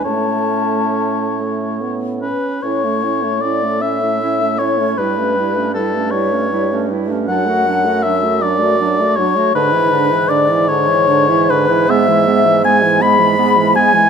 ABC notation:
X:1
M:6/8
L:1/16
Q:3/8=52
K:A
V:1 name="Flute"
a6 z4 B2 | c4 d2 e4 c2 | B4 A2 c4 z2 | f4 e2 d4 c2 |
B4 d2 c4 B2 | [K:E] e4 g2 b4 g2 |]
V:2 name="Oboe"
c8- c z B2 | c4 d2 e4 c2 | B4 A2 c4 z2 | f4 e2 d4 c2 |
B4 d2 c4 B2 | [K:E] e4 g2 b4 g2 |]
V:3 name="Clarinet"
C8- C2 z2 | E C E C E C E C E C E C | E C E C E C E C E C E C | D F D F D F D F D F D F |
D E D E D E D E D E D E | [K:E] B, G, B, G, B, G, B, G, B, G, B, G, |]
V:4 name="French horn" clef=bass
A,6 A,2 B,2 C2 | C A, C A, C A, C A, C A, C A, | =G, A, G, A, G, A, G, A, G, A, G, A, | F, A, F, A, F, A, F, A, F, A, F, A, |
D, E, D, E, D, E, D, E, D, E, D, E, | [K:E] G, E, G, E, G, E, G, E, G, E, G, E, |]
V:5 name="Bassoon" clef=bass
A,,8- A,,2 z2 | A,,12 | =G,,12 | F,,8- F,,2 z2 |
G,,12- | [K:E] G,,12 |]